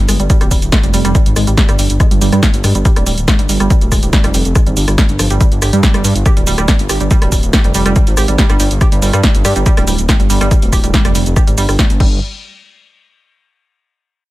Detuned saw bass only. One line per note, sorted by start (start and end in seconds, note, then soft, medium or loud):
0.09 0.17 G1 loud
0.20 0.28 G1 medium
0.41 0.49 D1 medium
0.51 0.60 D1 loud
0.62 0.70 D1 medium
0.84 0.92 F1 medium
0.94 1.03 F1 loud
1.05 1.13 F1 medium
1.26 1.34 G#1 medium
1.36 1.45 G#1 loud
1.47 1.55 G#1 medium
1.69 1.77 G1 medium
1.79 1.88 G1 loud
1.90 1.98 G1 medium
2.11 2.19 G1 medium
2.21 2.30 G1 loud
2.32 2.41 G2 medium
2.54 2.62 G1 medium
2.64 2.73 G2 loud
2.75 2.83 G1 loud
2.96 3.04 D1 medium
3.07 3.15 D1 loud
3.18 3.26 D1 medium
3.39 3.47 G1 medium
3.49 3.58 G1 loud
3.60 3.68 G1 loud
3.82 3.90 D1 medium
3.92 4.01 D1 loud
4.03 4.11 D1 medium
4.24 4.32 F1 medium
4.34 4.43 F1 loud
4.45 4.53 F1 medium
4.67 4.75 G#1 medium
4.77 4.86 G1 loud
4.88 4.96 G1 medium
5.09 5.17 G1 medium
5.19 5.28 G1 loud
5.30 5.38 G1 medium
5.52 5.60 G1 medium
5.62 5.71 G1 loud
5.73 5.81 G2 medium
5.94 6.02 G1 medium
6.04 6.13 G2 loud
6.15 6.24 G1 medium
6.37 6.45 D1 medium
6.47 6.56 D1 loud
6.58 6.66 D1 medium
6.79 6.87 G1 medium
6.90 6.98 G1 loud
7.01 7.09 G1 medium
7.22 7.30 D1 medium
7.32 7.41 D1 loud
7.43 7.51 D1 medium
7.64 7.73 F1 medium
7.75 7.83 F1 loud
7.86 7.94 F1 loud
8.07 8.15 G#1 medium
8.17 8.26 G#1 loud
8.28 8.36 G#1 medium
8.50 8.58 G1 medium
8.60 8.69 G1 loud
8.71 8.79 G1 medium
8.92 9.00 G1 medium
9.02 9.11 G1 loud
9.13 9.21 G2 medium
9.35 9.43 G1 medium
9.45 9.54 G2 loud
9.56 9.64 G1 loud
9.77 9.85 D1 medium
9.88 9.96 D1 loud
9.99 10.07 D1 loud
10.20 10.28 G1 medium
10.30 10.39 G1 loud
10.41 10.49 G1 medium
10.62 10.70 D1 medium
10.72 10.81 D1 loud
10.84 10.92 D1 loud
11.05 11.13 F1 medium
11.15 11.24 F1 loud
11.26 11.34 F1 medium
11.47 11.56 G#1 medium
11.58 11.66 G1 loud
11.69 11.77 G1 medium
11.90 11.98 G1 medium
12.00 12.20 G1 medium